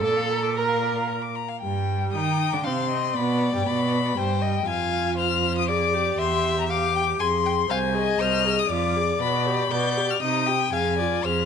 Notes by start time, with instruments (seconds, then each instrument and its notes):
0.03 cello A#2, viola A4, violin A4 D5
0.17 violin F5
0.30 violin A#5
0.43 violin D6
0.56 violin A#4 A#5, viola A#4
0.69 violin F5
0.82 violin D5
0.95 violin F5
1.08 violin A#5
1.22 violin D6
1.36 violin A#5
1.49 violin F5
1.61 cello G2, viola G3, violin G5
2.13 cello D#3, viola D#4, violin G5 D#6
2.52 cello D3, viola D4, violin D6
2.64 cello C3, viola C4, violin F5 C6
2.90 violin D#5
3.15 cello B2, viola B3, violin D5 B5
3.54 cello G2, viola G3, violin G5
3.67 cello B2, viola B3, violin B5
4.17 cello G2, viola G3, violin C5 G5
4.42 violin D#5
4.67 cello F2, viola F4, violin F5 G#5
5.18 violin C5 F6
5.58 violin D#6
5.69 viola G#4, violin D5 D6
5.94 viola G4
6.19 cello E2, violin E5 C6
6.59 violin A#5
6.69 viola G4, violin F5 D6
6.96 violin G5
7.19 cello F2, viola G#4, violin G#5 C6
7.46 violin G5
7.70 cello C2, viola C5, violin F5 G#5
7.95 viola G#4, violin D#5
8.19 cello C2, viola C5, violin F6
8.45 viola G#4
8.59 violin D#6
8.69 cello F2, viola F4, violin D5 D6
8.96 viola G#4
9.21 cello B2, viola B4, violin B5
9.46 viola G4
9.71 cello B2, viola B4, violin D5 G6
9.97 viola G4
10.10 violin F6
10.21 cello C3, viola D#4, violin D#5 D#6
10.47 viola G4, violin G5
10.73 cello F2, viola G#4, violin F5 G#5
10.98 viola F4, violin D5
11.24 cello F2, viola G#4, violin C5 F6